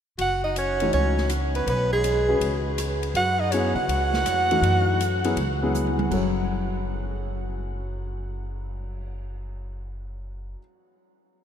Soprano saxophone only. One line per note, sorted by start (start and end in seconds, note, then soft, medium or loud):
0.21 0.43 F#5 medium
0.44 0.55 D#5 medium
0.58 0.91 C#5 medium
0.94 1.28 C#5 medium
1.56 1.67 B4 medium
1.69 1.91 B4 medium
1.93 2.62 G#4 medium
3.16 3.41 F#5 loud
3.40 3.53 D#5 medium
3.51 3.75 C#5 medium
3.76 5.70 F#5 loud